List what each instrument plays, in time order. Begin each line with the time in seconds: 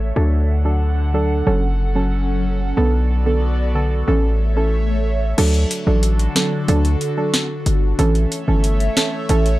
Already playing: 808-style bass A1, analog synth pad A4
0.16 808-style bass D2, synth stab F#3 D4 A4, analog synth pad A4 F#5
0.65 synth stab F#3 D4 A4
1.14 synth stab F#3 D4 A4
1.46 808-style bass F#1, synth stab F#3 C#4 A4
1.95 synth stab F#3 C#4 A4
2.77 808-style bass B1, synth stab D3 B3 A4
3.26 synth stab D3 B3 A4
3.75 synth stab D3 B3 A4
4.07 808-style bass A1, synth stab E3 C#4 A4
4.56 synth stab E3 C#4 A4
5.38 808-style bass D2, analog synth pad D3 D4 F#4 A4, synth stab F#3 D4 A4, closed hi-hat, crash
5.54 closed hi-hat
5.71 closed hi-hat
5.87 808-style bass A1, synth stab F#3 D4 A4
6.03 closed hi-hat
6.19 closed hi-hat
6.35 synth stab F#3 D4 A4, snare, closed hi-hat
6.68 808-style bass D2, synth stab F#3 D4 A4, closed hi-hat
6.85 closed hi-hat
7.01 closed hi-hat
7.17 synth stab F#3 D4 A4
7.34 snare, closed hi-hat
7.66 808-style bass G1, closed hi-hat
7.99 808-style bass A1, synth stab E3 C#4 A4, analog synth pad A3 A4 C#5 E5, closed hi-hat
8.15 closed hi-hat
8.32 closed hi-hat
8.48 808-style bass G1, synth stab E3 C#4 A4
8.64 closed hi-hat
8.80 closed hi-hat
8.97 synth stab E3 C#4 A4, snare, closed hi-hat
9.29 808-style bass A1, synth stab E3 C#4 A4, closed hi-hat
9.46 closed hi-hat